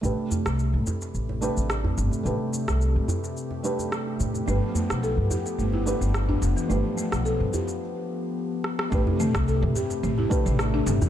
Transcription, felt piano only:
X:1
M:4/4
L:1/16
Q:"Swing 16ths" 1/4=108
K:Am
V:1 name="Felt piano"
[A,DGB]8- [A,DGB]2 [A,DGB] z4 z | [A,DGB]8- [A,DGB]2 [A,DGB] z4 z | [A,DGB]8- [A,DGB]2 [A,DGB] z4 z | [A,DGB]8 z8 |
[A,DGB]8- [A,DGB]2 [A,DGB] z4 z |]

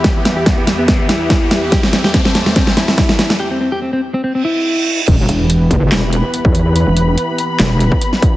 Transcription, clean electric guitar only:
X:1
M:4/4
L:1/16
Q:"Swing 16ths" 1/4=143
K:Em
V:1 name="Clean electric guitar"
G B, B, G B, B, z B, B, B, E4- E z | G C C G C C z C C C E4- E z | G C C G C C z C C C E4- E z | z16 |
z16 |]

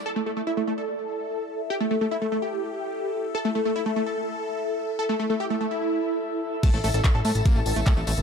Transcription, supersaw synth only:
X:1
M:4/4
L:1/16
Q:1/4=146
K:none
V:1 name="Supersaw synth"
A A, A, A, E A, A, A8 z | G A, A, A, E A, A, G8 z | A A, A, A, E A, A, A8 z | A A, A, A, G A, A, E8 z |
a A A A e A A a8 z |]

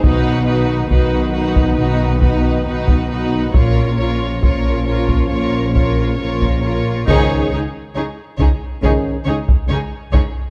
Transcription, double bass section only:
X:1
M:4/4
L:1/8
Q:1/4=68
K:Db
V:1 name="Double bass section" clef=bass
_C,,2 C,,2 C,,2 C,,2 | B,,,2 B,,,2 B,,,2 B,,,2 | D,, D,, D,, D,, D,, D,, D,, D,, |]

